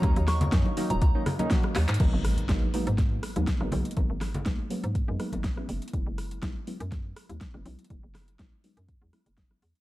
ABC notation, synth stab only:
X:1
M:4/4
L:1/16
Q:"Swing 16ths" 1/4=122
K:G#m
V:1 name="Synth stab"
[D,F,A,CD] z3 [D,F,A,CD]2 [D,F,A,CD]3 [D,F,A,CD] z [D,F,A,CD] [F,A,F]2 z2 | [F,G,A,B,D]4 [F,G,A,B,D] z [F,G,A,B,D]4- [F,G,A,B,D] [F,G,A,B,D] z [F,G,A,B,D] [F,G,A,B,D]2 | [F,G,A,B,D] z3 [F,G,A,B,D]2 [F,G,A,B,C]3 [F,G,A,B,D] [F,G,A,B,D]3 [F,G,B,CE]3 | [F,G,B,CE]4 [F,G,B,CE] z [F,G,B,CE]4- [F,G,B,CE] [F,G,B,CE] z [F,G,B,CE] [F,G,B,CE]2 |
[F,G,B,CE] z3 [F,G,B,CE]2 [F,G,B,CD]3 [F,G,B,CE] [F,G,B,CE]3 [F,G,B,CE]3 |]